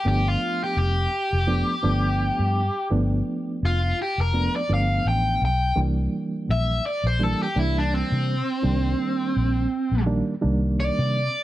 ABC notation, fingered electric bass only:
X:1
M:4/4
L:1/16
Q:"Swing 16ths" 1/4=84
K:C
V:1 name="Fingered electric bass" clef=bass
G,,,2 z2 F,,,2 z F,,,2 z G,,,3 G,,2 z | G,,,2 z2 F,,,2 z F,,,2 z G,,,2 A,,,2 B,,,2 | C,,2 z2 _B,,,2 z B,,,2 z C,,3 C,2 z | C,,2 z2 _B,,,2 z B,,,2 z C,,3 C,2 z |]